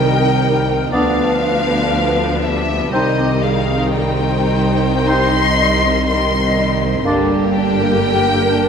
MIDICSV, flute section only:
0, 0, Header, 1, 2, 480
1, 0, Start_track
1, 0, Key_signature, -3, "minor"
1, 0, Tempo, 1005025
1, 1400, Time_signature, 4, 2, 24, 8
1, 1884, Tempo, 1132075
1, 2364, Tempo, 981997
1, 4128, End_track
2, 0, Start_track
2, 0, Title_t, "Flute section"
2, 0, Program_c, 0, 73
2, 0, Note_on_c, 0, 70, 59
2, 424, Note_off_c, 0, 70, 0
2, 449, Note_on_c, 0, 71, 61
2, 1163, Note_off_c, 0, 71, 0
2, 1171, Note_on_c, 0, 67, 53
2, 1404, Note_off_c, 0, 67, 0
2, 1410, Note_on_c, 0, 67, 65
2, 1639, Note_off_c, 0, 67, 0
2, 1643, Note_on_c, 0, 68, 55
2, 1886, Note_off_c, 0, 68, 0
2, 1892, Note_on_c, 0, 72, 66
2, 2358, Note_off_c, 0, 72, 0
2, 2369, Note_on_c, 0, 75, 78
2, 2846, Note_off_c, 0, 75, 0
2, 2852, Note_on_c, 0, 75, 63
2, 3325, Note_off_c, 0, 75, 0
2, 3584, Note_on_c, 0, 70, 67
2, 4128, Note_off_c, 0, 70, 0
2, 4128, End_track
0, 0, End_of_file